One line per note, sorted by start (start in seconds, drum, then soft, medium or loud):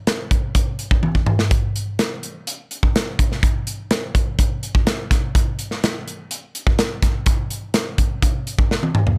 0.07 snare loud
0.07 closed hi-hat medium
0.31 kick medium
0.31 closed hi-hat medium
0.55 kick medium
0.55 closed hi-hat medium
0.79 closed hi-hat medium
0.91 kick medium
1.03 high tom medium
1.15 kick soft
1.26 mid tom medium
1.39 snare medium
1.51 kick loud
1.51 closed hi-hat medium
1.76 closed hi-hat medium
1.99 snare medium
1.99 closed hi-hat medium
2.23 closed hi-hat soft
2.47 closed hi-hat medium
2.71 closed hi-hat medium
2.83 kick medium
2.96 snare medium
2.96 closed hi-hat medium
3.19 kick medium
3.19 closed hi-hat medium
3.32 snare soft
3.43 kick loud
3.43 closed hi-hat medium
3.67 closed hi-hat medium
3.91 snare loud
3.91 closed hi-hat medium
4.15 kick medium
4.15 closed hi-hat medium
4.39 kick medium
4.39 closed hi-hat medium
4.63 closed hi-hat soft
4.75 kick medium
4.87 snare loud
4.87 closed hi-hat medium
5.11 kick medium
5.11 snare soft
5.11 closed hi-hat medium
5.35 kick medium
5.35 closed hi-hat medium
5.59 closed hi-hat medium
5.71 snare soft
5.84 snare loud
5.84 closed hi-hat medium
6.08 closed hi-hat soft
6.31 closed hi-hat medium
6.55 closed hi-hat medium
6.67 kick medium
6.79 snare medium
6.79 closed hi-hat medium
7.02 kick medium
7.02 snare soft
7.02 closed hi-hat medium
7.26 kick medium
7.26 closed hi-hat medium
7.50 closed hi-hat medium
7.74 snare medium
7.74 closed hi-hat medium
7.98 kick medium
7.98 closed hi-hat medium
8.22 kick medium
8.22 closed hi-hat medium
8.47 closed hi-hat medium
8.59 kick medium
8.71 snare soft
8.83 high tom soft
8.95 mid tom medium
9.07 floor tom medium